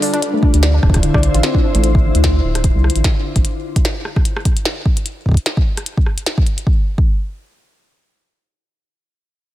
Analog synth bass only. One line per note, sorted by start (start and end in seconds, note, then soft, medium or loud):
0.54 0.79 D2 loud
0.83 1.10 D1 medium
1.14 1.29 C2 loud
1.34 1.41 A1 loud
1.75 2.11 A1 medium
2.15 2.40 D2 loud
2.44 2.71 D1 medium
2.75 2.90 C2 loud
2.95 3.02 A1 medium
3.36 3.42 A1 medium